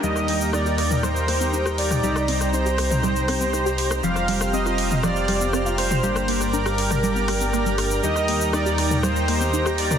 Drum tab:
HH |--o---o---o---o-|--o---o---o---o-|--o---o---o---o-|--o---o---o---o-|
SH |xx-xxx-xxx-xxx-x|xx-xxx-xxx-xxx-x|xx-xxx-xxx-xxx-x|xx-xxx-xxx-xxx-x|
SD |-r--r-r-r-r--r-r|-r-r--r-r-r-r--r|-r-r-r--r-r-r-r-|-r-r-r-r--r-r-r-|
T2 |-------o-------o|-------o--------|-------o-------o|-------o--------|
CG |-----------o----|-----------o----|-----------o----|---------o-o----|

HH |--o---o---o---o-|
SH |xx-xxx-xxx-xxx-x|
SD |-r--r-r-r-r--r-r|
T2 |-------o-------o|
CG |-----------o----|